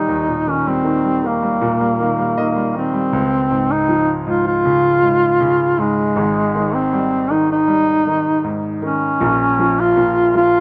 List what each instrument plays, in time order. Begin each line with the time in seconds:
Already playing: grand piano A#2 D#3 G3, duduk D#4
0.09 grand piano D#2
0.28 grand piano A#2
0.47 grand piano D#3, duduk C#4
0.66 grand piano G3, duduk C4
0.84 grand piano D#3
1.03 grand piano G3
1.23 grand piano D#3, duduk A#3
1.43 grand piano G3
1.61 grand piano A#2
1.80 grand piano G3
2.00 grand piano D#3
2.19 grand piano G3
2.37 grand piano D#3 D#5
2.56 grand piano G3
2.75 grand piano D#3, duduk C4
2.93 grand piano G3
3.13 grand piano C#2
3.51 grand piano G#2
3.71 duduk D#4
3.88 grand piano F3
4.27 grand piano G#2, duduk F4
4.47 duduk F4
4.65 grand piano C#3
5.03 grand piano G#2
5.40 grand piano C#3
5.79 grand piano G#2, duduk G#3
6.16 grand piano G#1 G#2
6.55 grand piano D#3
6.75 duduk C4
6.93 grand piano G3
7.30 grand piano D#3, duduk D#4
7.51 duduk D#4
7.68 grand piano G3
8.07 grand piano D#3
8.44 grand piano G#2
8.82 grand piano D#3, duduk C#4
9.20 grand piano A#1 A#2
9.59 grand piano F3
9.80 duduk F4
9.96 grand piano A#2
10.35 grand piano F3, duduk F4